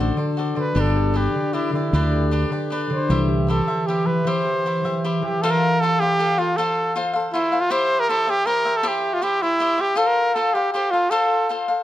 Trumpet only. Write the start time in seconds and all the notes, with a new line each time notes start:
0.59 B4
0.80 A4
1.17 G4
1.54 E4
1.74 E4
2.93 C5
3.50 A4
3.86 G4
4.06 B4
4.28 C5
5.24 G4
5.42 A4
5.51 A#4
5.81 A4
6.00 G4
6.39 F4
6.57 A4
7.33 E4
7.61 F4
7.71 C5
8.00 A#4
8.09 A4
8.30 G4
8.46 A#4
8.77 A4
8.88 G4
9.14 F4
9.23 G4
9.42 E4
9.81 G4
9.98 A4
10.07 A#4
10.34 A4
10.54 G4
10.73 G4
10.91 F4
11.11 A4